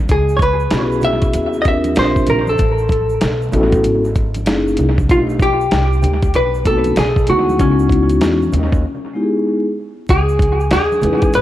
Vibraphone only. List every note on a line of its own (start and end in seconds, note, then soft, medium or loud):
0.70 1.60 B3 medium
0.70 1.60 C#4 medium
0.70 1.61 E4 medium
0.70 1.61 F#4 medium
0.70 0.80 G4 medium
0.79 1.64 G#4 medium
1.64 1.94 C4 medium
1.64 1.95 D4 medium
1.64 1.95 F4 medium
1.64 1.96 G4 medium
1.64 1.97 A#4 medium
1.95 2.35 C4 medium
1.95 2.35 D4 medium
1.95 2.36 F4 medium
1.95 2.36 G4 medium
1.95 2.36 A#4 medium
3.51 3.99 B3 medium
3.51 3.99 C#4 medium
3.51 4.00 E4 medium
3.51 4.00 F#4 medium
3.51 4.00 A4 loud
4.44 4.85 A#3 medium
4.44 4.85 C#4 medium
4.44 4.85 D#4 medium
4.44 4.86 E4 medium
4.44 4.86 G#4 medium
5.07 5.32 A3 medium
5.07 5.33 B3 soft
5.07 5.33 D4 medium
5.07 5.33 D#4 medium
5.07 5.34 G4 medium
6.64 6.89 A3 medium
6.64 6.89 B3 medium
6.64 6.90 C4 medium
6.64 6.90 D#4 medium
6.64 6.90 F#4 medium
7.26 7.88 G#3 medium
7.26 7.88 B3 medium
7.26 7.89 D#4 medium
7.26 7.89 E4 medium
7.26 7.90 F#4 medium
7.89 8.37 G#3 medium
7.89 8.37 B3 medium
7.89 8.37 D#4 medium
7.89 8.38 E4 medium
7.89 8.38 F#4 medium
9.14 9.62 G#3 medium
9.14 9.62 B3 medium
9.14 9.62 D#4 medium
9.14 9.63 E4 medium
9.14 9.24 G4 medium
9.23 9.66 G#4 medium
11.01 11.26 G#3 medium
11.01 11.27 C#4 medium
11.01 11.27 D#4 medium
11.01 11.27 E4 medium
11.01 11.28 B4 medium